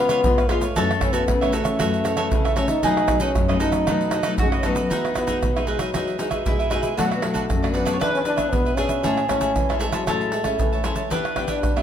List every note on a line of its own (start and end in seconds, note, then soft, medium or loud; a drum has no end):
0.00 0.23 C#3 medium
0.00 0.21 G#3 medium
0.00 0.22 B3 medium
0.00 0.52 B3 loud
0.00 0.22 F4 medium
0.00 0.83 B4 loud
0.09 0.20 F4 medium
0.09 0.20 B4 medium
0.09 0.20 C#5 medium
0.09 0.20 F5 medium
0.09 pandeiro medium
0.09 tamborim medium
0.09 shaker medium
0.24 0.74 G#2 medium
0.24 0.40 G#3 medium
0.24 0.41 B3 soft
0.24 0.41 F4 medium
0.24 pandeiro medium
0.24 shaker medium
0.24 surdo loud
0.38 0.48 B4 soft
0.38 0.49 C#5 soft
0.38 0.50 F5 medium
0.38 pandeiro soft
0.38 tamborim medium
0.38 shaker soft
0.49 0.66 G#3 medium
0.49 0.63 G#3 medium
0.49 0.66 B3 medium
0.49 0.62 F4 medium
0.49 0.66 F4 medium
0.49 0.62 B4 medium
0.49 0.61 C#5 medium
0.49 0.60 F5 medium
0.49 pandeiro medium
0.49 tamborim medium
0.61 1.02 A3 medium
0.61 0.75 B4 soft
0.61 0.75 C#5 medium
0.61 0.75 F5 medium
0.61 pandeiro medium
0.61 shaker medium
0.76 1.26 F#2 medium
0.76 0.92 E3 medium
0.76 0.93 A3 medium
0.76 0.93 C#4 medium
0.76 1.12 F#4 medium
0.76 2.84 A4 medium
0.76 1.12 A4 medium
0.76 1.12 C#5 medium
0.76 1.12 E5 medium
0.76 pandeiro medium
0.76 shaker medium
0.76 surdo medium
0.91 pandeiro soft
0.91 tamborim medium
0.91 shaker soft
1.01 1.27 E3 medium
1.01 1.27 A3 soft
1.01 1.15 C#4 medium
1.01 1.27 C#4 medium
1.01 pandeiro medium
1.01 tamborim medium
1.01 shaker medium
1.01 surdo medium
1.13 1.56 B3 medium
1.13 1.23 F#4 medium
1.13 1.24 A4 medium
1.13 1.24 C#5 medium
1.13 1.24 E5 medium
1.13 pandeiro medium
1.13 shaker medium
1.28 1.78 C#3 medium
1.28 pandeiro medium
1.28 tamborim medium
1.28 shaker medium
1.28 surdo medium
1.41 1.77 E3 medium
1.41 1.77 A3 medium
1.41 1.78 C#4 medium
1.41 1.52 A4 soft
1.41 1.52 C#5 medium
1.41 1.52 E5 medium
1.41 pandeiro soft
1.41 tamborim medium
1.41 shaker soft
1.52 2.59 A3 loud
1.52 1.65 F#4 medium
1.52 1.64 A4 medium
1.52 1.63 C#5 medium
1.52 1.62 E5 medium
1.52 pandeiro medium
1.52 shaker medium
1.64 1.78 A4 soft
1.64 1.78 C#5 medium
1.64 1.78 E5 medium
1.64 pandeiro medium
1.64 tamborim medium
1.64 shaker medium
1.79 2.30 F#2 medium
1.79 2.15 E3 medium
1.79 2.16 A3 medium
1.79 2.16 C#4 medium
1.79 2.03 F#4 medium
1.79 2.03 A4 medium
1.79 2.04 C#5 medium
1.79 2.04 E5 medium
1.79 pandeiro medium
1.79 tamborim medium
1.79 shaker medium
1.79 surdo medium
1.94 pandeiro soft
1.94 shaker soft
2.04 2.15 F#4 medium
2.04 2.16 A4 medium
2.04 2.16 C#5 medium
2.04 2.16 E5 medium
2.04 pandeiro medium
2.04 tamborim medium
2.04 shaker medium
2.17 2.53 E3 medium
2.17 2.53 A3 medium
2.17 2.54 C#4 medium
2.17 2.27 F#4 medium
2.17 2.27 A4 medium
2.17 2.27 C#5 medium
2.17 2.27 E5 medium
2.17 pandeiro medium
2.17 tamborim medium
2.17 shaker medium
2.32 2.82 C#3 medium
2.32 pandeiro medium
2.32 shaker medium
2.32 surdo loud
2.44 2.55 A4 soft
2.44 2.56 C#5 soft
2.44 2.56 E5 medium
2.44 pandeiro soft
2.44 tamborim medium
2.44 shaker soft
2.56 2.75 E3 medium
2.56 2.75 A3 medium
2.56 2.70 C#4 medium
2.56 2.75 C#4 medium
2.56 2.69 F#4 medium
2.56 2.68 A4 medium
2.56 2.68 C#5 medium
2.56 2.67 E5 medium
2.56 pandeiro medium
2.56 tamborim medium
2.56 shaker medium
2.68 3.22 D#4 loud
2.68 2.82 A4 soft
2.68 2.82 C#5 soft
2.68 2.81 E5 medium
2.68 pandeiro medium
2.68 shaker medium
2.83 3.33 B2 medium
2.83 3.06 F#3 medium
2.83 3.06 A3 medium
2.83 3.19 D#4 medium
2.83 3.06 D#4 medium
2.83 4.39 G#4 medium
2.83 3.19 B4 medium
2.83 3.20 D#5 medium
2.83 pandeiro medium
2.83 shaker medium
2.83 surdo medium
2.97 pandeiro soft
2.97 tamborim medium
2.97 shaker soft
3.08 3.44 F#3 medium
3.08 3.44 A3 medium
3.08 3.45 D#4 medium
3.08 pandeiro medium
3.08 tamborim loud
3.08 shaker medium
3.08 surdo medium
3.20 3.59 C#4 medium
3.20 3.30 D#4 medium
3.20 3.31 A4 medium
3.20 3.31 B4 medium
3.20 3.31 D#5 medium
3.20 pandeiro medium
3.20 shaker medium
3.35 3.85 F#2 medium
3.35 pandeiro medium
3.35 tamborim medium
3.35 shaker medium
3.35 surdo medium
3.48 3.84 F#3 medium
3.48 3.84 A3 medium
3.48 3.84 D#4 medium
3.48 3.59 A4 soft
3.48 3.60 B4 soft
3.48 3.60 D#5 medium
3.48 pandeiro soft
3.48 tamborim medium
3.48 shaker soft
3.60 3.73 D#4 medium
3.60 4.34 D#4 loud
3.60 3.72 A4 medium
3.60 3.71 B4 medium
3.60 3.70 D#5 medium
3.60 pandeiro medium
3.60 shaker medium
3.72 3.86 A4 soft
3.72 3.85 B4 soft
3.72 3.85 D#5 medium
3.72 pandeiro medium
3.72 tamborim medium
3.72 shaker medium
3.87 4.37 B2 medium
3.87 4.22 F#3 medium
3.87 4.22 A3 medium
3.87 4.10 D#4 medium
3.87 4.23 D#4 medium
3.87 4.11 A4 medium
3.87 4.11 B4 medium
3.87 4.12 D#5 medium
3.87 pandeiro medium
3.87 tamborim medium
3.87 shaker medium
3.87 surdo medium
4.01 pandeiro soft
4.01 shaker soft
4.11 4.22 D#4 medium
4.11 4.22 A4 medium
4.11 4.22 B4 soft
4.11 4.23 D#5 medium
4.11 pandeiro medium
4.11 tamborim medium
4.11 shaker medium
4.23 4.60 F#3 medium
4.23 4.60 A3 medium
4.23 4.34 D#4 medium
4.23 4.60 D#4 medium
4.23 4.34 A4 medium
4.23 4.34 B4 medium
4.23 4.34 D#5 medium
4.23 pandeiro medium
4.23 tamborim medium
4.23 shaker medium
4.38 4.89 F#2 medium
4.38 4.48 G#3 medium
4.38 4.87 F#4 medium
4.38 pandeiro medium
4.38 shaker medium
4.38 surdo loud
4.52 4.62 A4 soft
4.52 4.63 B4 soft
4.52 4.63 D#5 medium
4.52 pandeiro soft
4.52 tamborim medium
4.52 shaker soft
4.58 4.67 C#4 medium
4.63 4.80 F#3 medium
4.63 4.80 A3 medium
4.63 5.16 B3 medium
4.63 4.76 D#4 medium
4.63 4.81 D#4 medium
4.63 4.75 A4 medium
4.63 4.74 B4 medium
4.63 4.74 D#5 medium
4.63 pandeiro medium
4.63 tamborim medium
4.63 shaker medium
4.75 4.89 A4 soft
4.75 4.89 B4 soft
4.75 4.88 D#5 medium
4.75 pandeiro medium
4.75 shaker medium
4.90 5.40 E3 medium
4.90 5.07 G#3 medium
4.90 5.13 D#4 medium
4.90 6.46 D#4 medium
4.90 5.07 D#4 medium
4.90 5.07 F#4 medium
4.90 5.14 G#4 medium
4.90 5.14 B4 medium
4.90 5.15 E5 medium
4.90 pandeiro medium
4.90 shaker medium
4.90 surdo medium
5.05 pandeiro soft
5.05 tamborim medium
5.05 shaker soft
5.14 5.24 G#3 soft
5.14 5.70 B3 medium
5.14 5.26 D#4 soft
5.14 5.24 D#4 medium
5.14 5.25 F#4 medium
5.14 5.26 G#4 soft
5.14 5.26 B4 soft
5.14 5.27 E5 medium
5.14 pandeiro medium
5.14 tamborim medium
5.14 shaker medium
5.14 surdo soft
5.27 5.51 G#3 medium
5.27 5.37 D#4 medium
5.27 5.51 D#4 medium
5.27 5.51 F#4 medium
5.27 5.37 G#4 medium
5.27 5.38 B4 medium
5.27 5.38 E5 medium
5.27 pandeiro medium
5.27 shaker medium
5.27 surdo soft
5.43 5.92 B2 medium
5.43 pandeiro medium
5.43 tamborim medium
5.43 shaker medium
5.43 surdo medium
5.56 5.91 G#3 medium
5.56 5.91 D#4 medium
5.56 5.91 F#4 medium
5.56 5.66 G#4 soft
5.56 5.67 B4 soft
5.56 5.67 E5 soft
5.56 pandeiro soft
5.56 tamborim medium
5.56 shaker soft
5.67 5.81 G#3 medium
5.67 5.78 D#4 medium
5.67 5.78 G#4 medium
5.67 5.78 B4 medium
5.67 5.79 E5 medium
5.67 pandeiro medium
5.79 6.19 F#3 medium
5.79 5.89 D#4 medium
5.79 5.89 G#4 medium
5.79 5.89 B4 medium
5.79 5.90 E5 medium
5.79 pandeiro medium
5.79 tamborim medium
5.79 shaker medium
5.79 surdo soft
5.94 6.43 E3 medium
5.94 6.10 G#3 soft
5.94 6.17 D#4 medium
5.94 6.10 D#4 soft
5.94 6.10 F#4 medium
5.94 6.18 G#4 medium
5.94 6.19 B4 medium
5.94 6.19 E5 medium
5.94 pandeiro medium
5.94 tamborim medium
5.94 shaker medium
5.94 surdo medium
6.07 pandeiro soft
6.07 shaker soft
6.19 6.27 G#3 medium
6.19 6.31 G#3 medium
6.19 6.31 D#4 soft
6.19 6.27 D#4 medium
6.19 6.28 F#4 medium
6.19 6.30 G#4 soft
6.19 6.30 B4 soft
6.19 6.29 E5 soft
6.19 pandeiro medium
6.19 shaker medium
6.30 6.67 G#3 medium
6.30 6.44 G#3 medium
6.30 6.67 D#4 medium
6.30 6.67 F#4 medium
6.30 6.57 G#4 soft
6.30 6.57 B4 soft
6.30 6.56 E5 soft
6.30 pandeiro medium
6.30 tamborim medium
6.30 shaker medium
6.30 surdo soft
6.46 6.95 B2 medium
6.46 6.70 G#3 medium
6.46 6.94 E4 medium
6.46 pandeiro medium
6.46 shaker medium
6.46 surdo loud
6.59 6.70 G#4 soft
6.59 6.70 B4 soft
6.59 6.70 E5 medium
6.59 pandeiro soft
6.59 shaker soft
6.70 6.88 G#3 medium
6.70 6.95 G#3 medium
6.70 6.83 D#4 medium
6.70 6.88 D#4 medium
6.70 6.88 F#4 medium
6.70 6.82 G#4 medium
6.70 6.81 B4 medium
6.70 6.80 E5 medium
6.70 pandeiro medium
6.70 tamborim medium
6.70 shaker medium
6.82 6.96 G#4 soft
6.82 6.95 B4 soft
6.82 6.95 E5 soft
6.82 pandeiro medium
6.82 shaker medium
6.82 surdo soft
6.97 7.47 B2 medium
6.97 7.20 F#3 medium
6.97 7.06 A3 medium
6.97 7.20 A3 medium
6.97 7.21 D4 medium
6.97 7.20 D4 medium
6.97 7.97 F#4 medium
6.97 7.21 A4 medium
6.97 7.22 B4 medium
6.97 7.22 D5 medium
6.97 pandeiro medium
6.97 shaker medium
6.97 surdo medium
7.12 pandeiro soft
7.12 tamborim medium
7.12 shaker soft
7.16 7.24 B3 medium
7.22 7.58 F#3 soft
7.22 7.75 A3 loud
7.22 7.58 A3 medium
7.22 7.32 D4 soft
7.22 7.58 D4 medium
7.22 7.33 A4 soft
7.22 7.33 B4 soft
7.22 7.34 D5 soft
7.22 pandeiro medium
7.22 tamborim medium
7.34 7.44 D4 medium
7.34 7.44 A4 medium
7.34 7.44 B4 medium
7.34 7.45 D5 medium
7.34 pandeiro medium
7.34 shaker medium
7.34 surdo soft
7.50 7.99 F#2 medium
7.50 pandeiro medium
7.50 tamborim medium
7.50 shaker medium
7.50 surdo medium
7.63 7.85 F#3 soft
7.63 7.85 A3 medium
7.63 7.85 D4 medium
7.63 7.73 A4 soft
7.63 7.73 B4 soft
7.63 7.74 D5 medium
7.63 pandeiro soft
7.63 tamborim medium
7.63 shaker soft
7.74 8.02 B3 medium
7.74 7.84 D4 medium
7.74 7.84 A4 medium
7.74 7.85 B4 medium
7.74 7.85 D5 medium
7.74 pandeiro medium
7.85 8.35 B3 medium
7.85 7.96 D4 medium
7.85 8.35 D4 medium
7.85 8.35 G#4 medium
7.85 7.96 A4 medium
7.85 7.96 B4 medium
7.85 7.96 D5 medium
7.85 pandeiro medium
7.85 tamborim medium
7.85 shaker medium
7.85 surdo soft
7.93 8.01 C#5 medium
8.00 8.50 E3 medium
8.00 8.24 D4 medium
8.00 8.14 D4 loud
8.00 8.25 G#4 medium
8.00 8.25 B4 medium
8.00 9.08 B4 loud
8.00 8.26 E5 medium
8.00 pandeiro medium
8.00 tamborim medium
8.00 shaker medium
8.00 surdo medium
8.15 8.20 C#4 medium
8.15 pandeiro soft
8.15 shaker soft
8.25 8.38 D4 soft
8.25 8.54 D4 loud
8.25 8.37 G#4 soft
8.25 8.36 B4 soft
8.25 8.35 E5 medium
8.25 pandeiro medium
8.25 shaker medium
8.36 8.73 B3 medium
8.36 8.74 D4 medium
8.36 8.64 G#4 soft
8.36 8.74 G#4 medium
8.36 8.63 B4 soft
8.36 8.63 E5 soft
8.36 pandeiro medium
8.36 tamborim medium
8.36 shaker medium
8.36 surdo soft
8.53 9.02 B2 medium
8.53 8.78 B3 medium
8.53 pandeiro medium
8.53 shaker medium
8.53 surdo loud
8.65 8.76 G#4 soft
8.65 8.77 B4 soft
8.65 8.77 E5 soft
8.65 pandeiro soft
8.65 shaker soft
8.77 9.02 B3 medium
8.77 9.28 C#4 loud
8.77 8.90 D4 medium
8.77 9.02 D4 medium
8.77 8.89 G#4 medium
8.77 9.02 G#4 medium
8.77 8.88 B4 medium
8.77 8.87 E5 medium
8.77 pandeiro medium
8.77 tamborim medium
8.77 shaker medium
8.89 9.02 G#4 soft
8.89 9.02 B4 soft
8.89 9.02 E5 soft
8.89 pandeiro medium
8.89 shaker medium
8.89 surdo soft
9.03 9.54 A2 medium
9.03 9.20 G#3 medium
9.03 9.20 C#4 medium
9.03 9.20 E4 medium
9.03 9.27 G#4 medium
9.03 10.08 G#4 medium
9.03 9.28 C#5 medium
9.03 9.28 E5 medium
9.03 9.29 A5 medium
9.03 pandeiro medium
9.03 shaker medium
9.03 surdo medium
9.17 pandeiro soft
9.17 tamborim medium
9.17 shaker soft
9.28 9.64 G#3 medium
9.28 9.78 C#4 loud
9.28 9.65 C#4 medium
9.28 9.65 E4 medium
9.28 9.39 G#4 soft
9.28 9.40 C#5 soft
9.28 9.40 E5 soft
9.28 9.40 A5 medium
9.28 pandeiro medium
9.28 tamborim medium
9.28 shaker medium
9.28 surdo soft
9.41 9.51 G#4 medium
9.41 9.51 C#5 medium
9.41 9.51 E5 medium
9.41 9.51 A5 medium
9.41 pandeiro medium
9.41 shaker medium
9.41 surdo soft
9.56 10.05 E3 medium
9.56 pandeiro medium
9.56 tamborim medium
9.56 shaker medium
9.56 surdo medium
9.69 9.91 G#3 medium
9.69 9.91 C#4 medium
9.69 9.92 E4 medium
9.69 9.79 C#5 soft
9.69 9.79 E5 soft
9.69 9.80 A5 medium
9.69 pandeiro soft
9.69 tamborim medium
9.69 shaker soft
9.79 9.94 A3 medium
9.79 9.91 G#4 medium
9.79 9.91 C#5 medium
9.79 9.92 E5 medium
9.79 9.92 A5 medium
9.79 pandeiro medium
9.79 shaker medium
9.92 10.33 F#3 medium
9.92 10.03 G#3 medium
9.92 10.03 C#4 medium
9.92 10.03 E4 medium
9.92 10.03 G#4 medium
9.92 10.03 C#5 medium
9.92 10.03 E5 medium
9.92 10.03 A5 medium
9.92 pandeiro medium
9.92 tamborim medium
9.92 shaker medium
9.92 surdo soft
10.07 10.57 A2 medium
10.07 10.32 G#3 soft
10.07 10.32 C#4 soft
10.07 10.32 E4 medium
10.07 10.31 G#4 medium
10.07 11.14 A4 medium
10.07 10.32 C#5 medium
10.07 10.32 E5 medium
10.07 10.32 A5 medium
10.07 pandeiro medium
10.07 tamborim medium
10.07 shaker medium
10.07 surdo medium
10.21 pandeiro soft
10.21 shaker soft
10.32 10.43 G#3 medium
10.32 10.45 G#4 medium
10.32 10.45 C#5 soft
10.32 10.44 E5 medium
10.32 10.43 A5 medium
10.32 pandeiro medium
10.44 10.60 G#3 medium
10.44 10.81 C#4 medium
10.44 10.81 E4 medium
10.44 10.71 C#5 soft
10.44 10.71 E5 soft
10.44 10.70 A5 soft
10.44 pandeiro medium
10.44 tamborim medium
10.44 shaker medium
10.44 surdo soft
10.59 11.09 E3 medium
10.59 10.85 A3 medium
10.59 pandeiro medium
10.59 shaker medium
10.59 surdo loud
10.72 10.83 C#5 soft
10.72 10.84 E5 soft
10.72 10.84 A5 soft
10.72 pandeiro soft
10.72 shaker soft
10.84 11.02 G#3 medium
10.84 11.02 C#4 medium
10.84 11.02 E4 medium
10.84 10.97 G#4 medium
10.84 10.96 C#5 medium
10.84 10.95 E5 medium
10.84 10.94 A5 medium
10.84 pandeiro medium
10.84 tamborim medium
10.84 shaker medium
10.96 11.10 C#5 soft
10.96 11.09 E5 soft
10.96 11.09 A5 soft
10.96 pandeiro medium
10.96 shaker medium
10.96 surdo soft
11.10 11.60 E3 medium
11.10 11.26 B3 soft
11.10 11.35 D4 medium
11.10 11.27 D4 medium
11.10 11.35 G4 medium
11.10 11.27 G4 medium
11.10 11.82 B4 medium
11.10 11.36 B4 medium
11.10 11.36 E5 medium
11.10 pandeiro medium
11.10 shaker medium
11.10 surdo medium
11.25 pandeiro soft
11.25 tamborim medium
11.25 shaker soft
11.36 11.71 B3 medium
11.36 11.48 B3 medium
11.36 11.46 D4 soft
11.36 11.72 D4 soft
11.36 11.47 G4 soft
11.36 11.72 G4 medium
11.36 11.47 B4 soft
11.36 11.47 E5 soft
11.36 pandeiro medium
11.36 tamborim medium
11.36 surdo soft
11.48 11.58 D4 medium
11.48 11.82 D4 medium
11.48 11.58 G4 medium
11.48 11.58 B4 medium
11.48 11.58 E5 medium
11.48 pandeiro medium
11.48 shaker medium
11.48 surdo soft
11.63 11.82 B2 medium
11.63 pandeiro medium
11.63 tamborim medium
11.63 shaker medium
11.63 surdo medium
11.76 11.82 B3 medium
11.76 11.82 D4 medium
11.76 11.82 G4 soft
11.76 11.82 G4 medium
11.76 11.82 B4 soft
11.76 11.82 E5 medium
11.76 pandeiro soft
11.76 tamborim medium
11.76 shaker soft